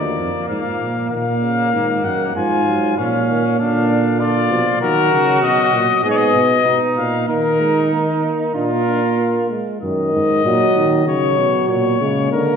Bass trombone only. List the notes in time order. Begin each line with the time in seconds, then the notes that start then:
Already playing: D2
0.17 F2
0.48 G#2
0.80 A#2
1.11 A#2
1.74 G#2
2.05 F#2
2.35 G#2
2.98 A#2
3.59 A#2
4.51 B2
4.81 D#3
5.12 C#3
5.41 B2
5.72 A#2
6.03 G#2
6.34 B2
6.65 B2
6.96 A#2
7.28 D#3
8.55 A#2
9.82 F#2
10.13 G#2
10.45 A#2
10.75 D#3
11.06 C#3
11.38 B2
11.69 A#2
12.01 C#3
12.32 D3